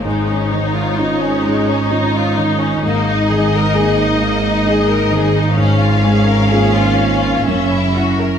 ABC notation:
X:1
M:3/4
L:1/16
Q:1/4=65
K:Dblyd
V:1 name="Violin section"
d12 | e12 | f8 _f4 |]
V:2 name="Violin section"
A, D E F E D A, D E F E D | B, E A B A E B, E A B A E | D F A B A F D F D _F _G B |]
V:3 name="Viola section"
E12- | E12 | D12 |]
V:4 name="Grand piano"
A,,2 E,2 [DEF]2 D2 [DEF]2 E,2 | A,,2 E,2 [B,EA]2 B,2 [B,EA]2 E,2 | A,,2 A,2 [B,DF]2 B,2 _G,,2 [D_F]2 |]
V:5 name="Cello section" clef=bass
A,,12 | A,,12- | A,,8 _G,,4 |]
V:6 name="Double bass section" clef=bass
A,,,12 | A,,,12- | A,,,8 _G,,,4 |]